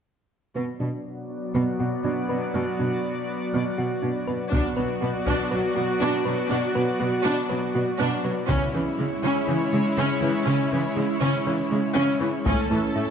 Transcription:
0.55 B2 F#3 B3 F#4 D5
0.80 B2 D4
1.54 B2 B3
1.79 B2 F#4
2.04 B2 D4
2.29 B2 B4
2.54 B2 B3
2.79 B2 D4
3.54 B2 B3
3.78 B2 F#4
4.02 B2 D4
4.27 B2 B4
4.52 B2 F#3 B3 D4 F#4 D5, taiko
4.76 B2 F#3 B4
5.01 B2 B3 F#4
5.26 B2 B3 D4, taiko
5.51 B2 F#3 B4
5.76 B2 B3 F#4
6.01 B2 B3 D4
6.25 B2 F#3 B4
6.50 B2 B3 D4
6.75 B2 F#3 B4
6.99 B2 B3 F#4
7.24 B2 B3 D4
7.50 B2 F#3 B4
7.74 B2 B3 F#4
7.99 B2 B3 D4
8.24 B2 F#3 B4
8.49 C#3 G#3 C#4 E4 C#5, taiko
8.74 C#3 E3 C#4
8.98 C#3 G#3
9.23 C#3 C#4
9.48 C#3 E3 C#4
9.72 C#3 G#3
9.97 C#3 C#4
10.22 C#3 E3 C#4
10.46 C#3 C#4
10.72 C#3 E3 C#4
10.96 C#3 G#3
11.21 C#3 C#4
11.46 C#3 E3 C#4
11.71 C#3 G#3
11.96 C#3 C#4
12.20 C#3 E3 C#4
12.45 A2 A3 C#4 E4 A4 C#5, taiko
12.70 A2 E3 A4
12.95 A2 A3 E4

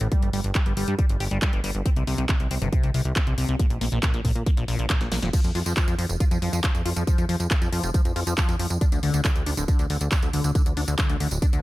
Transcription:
0.01 A1 A2, closed hi-hat
0.12 G3, kick, closed hi-hat
0.23 G1 G3, closed hi-hat
0.33 G1 G3, open hi-hat
0.44 G1, closed hi-hat
0.55 G4, kick, clap, closed hi-hat
0.66 G1 G3, closed hi-hat
0.77 G1 G3, open hi-hat
0.88 G2 G3, closed hi-hat
0.99 G3, kick, closed hi-hat
1.09 G1, closed hi-hat
1.20 G1 G4, open hi-hat
1.31 G1 G3, closed hi-hat
1.42 G3, kick, clap, closed hi-hat
1.53 G1 G3, closed hi-hat
1.64 G1 G3, open hi-hat
1.75 G1, closed hi-hat
1.86 C4, kick, closed hi-hat
1.96 C2 C3, closed hi-hat
2.07 C2 C3, open hi-hat
2.18 C2 C3, closed hi-hat
2.29 C3, kick, clap, closed hi-hat
2.40 C2, closed hi-hat
2.51 C2 C4, open hi-hat
2.62 G1 C3, closed hi-hat
2.73 C3, kick, closed hi-hat
2.83 C2 C3, closed hi-hat
2.94 C2 C3, open hi-hat
3.05 C2, closed hi-hat
3.16 C4, kick, clap, closed hi-hat
3.27 C2 C3, closed hi-hat
3.38 C2 C3, open hi-hat
3.49 C2 C3, closed hi-hat
3.59 A#2, kick, closed hi-hat
3.70 A#1, closed hi-hat
3.81 A#1 A#3, open hi-hat
3.92 A#1 A#2, closed hi-hat
4.03 A#2, kick, clap, closed hi-hat
4.14 A#1 A#2, closed hi-hat
4.25 A#1 A#2, kick, open hi-hat
4.36 A#2, closed hi-hat
4.46 A#3, kick, closed hi-hat
4.57 A#1 A#2, closed hi-hat
4.68 A#1 A#2, open hi-hat
4.79 A#1 A#2, closed hi-hat
4.90 A#2, kick, clap, closed hi-hat
5.01 A#1, snare, closed hi-hat
5.12 A#1 A#3, snare, open hi-hat
5.22 F1 A#2, snare, closed hi-hat
5.33 F3, kick, closed hi-hat, crash, tambourine
5.44 F2, closed hi-hat, tambourine
5.55 F2 F4, open hi-hat
5.66 F2 F3, closed hi-hat, tambourine
5.77 F3, kick, clap, closed hi-hat, tambourine
5.88 F2 F3, closed hi-hat, tambourine
5.99 F2 F3, open hi-hat
6.09 F1, closed hi-hat, tambourine
6.20 F4, kick, closed hi-hat, tambourine
6.31 F2 F3, closed hi-hat, tambourine
6.42 F2 F3, open hi-hat
6.53 F2 F3, closed hi-hat, tambourine
6.64 F3, kick, clap, closed hi-hat, tambourine
6.75 F2, closed hi-hat, tambourine
6.86 F2 F4, open hi-hat
6.96 F2 F3, closed hi-hat, tambourine
7.07 F3, kick, closed hi-hat, tambourine
7.18 F2 F3, closed hi-hat, tambourine
7.29 F2 F3, open hi-hat
7.40 F2, closed hi-hat, tambourine
7.51 F4, kick, clap, closed hi-hat, tambourine
7.62 F2 F3, closed hi-hat, tambourine
7.73 F2 F3, open hi-hat
7.83 F1 F3, closed hi-hat, tambourine
7.94 F3, kick, closed hi-hat, tambourine
8.05 F2, closed hi-hat, tambourine
8.16 F2 F4, open hi-hat
8.27 F2 F3, closed hi-hat, tambourine
8.38 F3, kick, clap, closed hi-hat, tambourine
8.49 F2 F3, closed hi-hat, tambourine
8.60 F2 F3, open hi-hat
8.70 F2, closed hi-hat, tambourine
8.81 D4, kick, closed hi-hat, tambourine
8.92 D2 D3, closed hi-hat, tambourine
9.03 D2 D3, open hi-hat
9.14 D2 D3, closed hi-hat, tambourine
9.25 D3, kick, clap, closed hi-hat, tambourine
9.36 D2, closed hi-hat, tambourine
9.46 D2 D4, open hi-hat
9.57 D1 D3, closed hi-hat, tambourine
9.68 D3, kick, closed hi-hat, tambourine
9.79 D2 D3, closed hi-hat, tambourine
9.90 D2 D3, open hi-hat
10.01 D2, closed hi-hat, tambourine
10.12 D4, kick, clap, closed hi-hat, tambourine
10.23 D2 D3, closed hi-hat, tambourine
10.33 D2 D3, open hi-hat
10.44 D2 D3, closed hi-hat, tambourine
10.55 D3, kick, closed hi-hat, tambourine
10.66 D2, closed hi-hat, tambourine
10.77 D2 D4, open hi-hat
10.88 D2 D3, closed hi-hat, tambourine
10.99 D3, kick, clap, closed hi-hat, tambourine
11.09 D2 D3, closed hi-hat, tambourine
11.20 D2 D3, open hi-hat
11.31 D1, closed hi-hat, tambourine
11.42 D4, kick, closed hi-hat, tambourine
11.53 D2 D3, closed hi-hat, tambourine

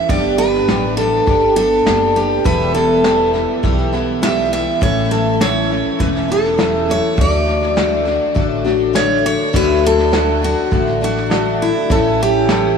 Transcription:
Already playing: E4
0.09 G1 G2 D3 G3 B3 D4 G4 D5, kick, snare
0.38 B4, snare
0.54 snare
0.68 A1 G3 B3 D4 G4, snare, hi-hat pedal
0.97 G3 B3 D4 G4 A4, snare
1.27 G1 G3 B3 D4 G4, kick, snare
1.56 G3 B3 D4 G4 A4, snare
1.85 F#1 G3 B3 D4 G4, snare, hi-hat pedal
2.16 G4, snare
2.44 E1 E2 B2 E3 G3 B3 E4 B4, kick, snare
2.74 A4, snare
3.04 E3 G3 B3 E4, snare, hi-hat pedal
3.34 E3 G3 B3 E4, snare
3.63 B1 E3 G3 B3 E4, kick, snare
3.78 snare
3.92 E3 G3 B3 E4, snare
4.22 E3 G3 B3 E4 E5, snare, hi-hat pedal
4.53 E5, snare
4.81 A1 A2 E3 A3 C#4 E4 C#5, kick, snare
5.11 A4, snare
5.40 E3 A3 C#4 E4 C#5, snare, hi-hat pedal
5.69 A3 C#4 E4, snare
5.99 E1 E3 A3 C#4 E4 B4, kick, snare
6.15 snare
6.28 A3 C#4 E4 A4, snare
6.45 snare
6.58 E3 A3 C#4 E4, snare, hi-hat pedal
6.89 C#5, snare
7.17 D2 D3 A3 D4 F#4 D5, kick, snare
7.48 snare
7.62 snare
7.76 D3 A3 D4 F#4, snare, hi-hat pedal
8.05 A3 D4 F#4, snare
8.34 A1 D3 A3 D4 F#4, kick, snare
8.49 C#5
8.64 A3 D4 F#4, snare
8.93 D3 A3 D4 F#4 C#5, snare, hi-hat pedal
9.25 C#5, snare
9.53 D2 D3 A3 D4 F#4 B4, kick, snare, crash
9.83 A4, snare
9.98 snare
10.12 D3 A3 D4 F#4 A4, snare, hi-hat pedal
10.42 A3 D4 F#4, snare
10.71 A1 D3 A3 D4 F#4, kick, snare
10.87 snare
11.01 A3 D4 F#4, snare
11.17 snare
11.30 D3 A3 D4 F#4 A4, snare, hi-hat pedal
11.61 E4, snare
11.90 A1 A2 E3 A3 C#4 E4 A4, kick, snare
12.20 G4, snare
12.48 E3 A3 C#4 E4 A4, snare, hi-hat pedal

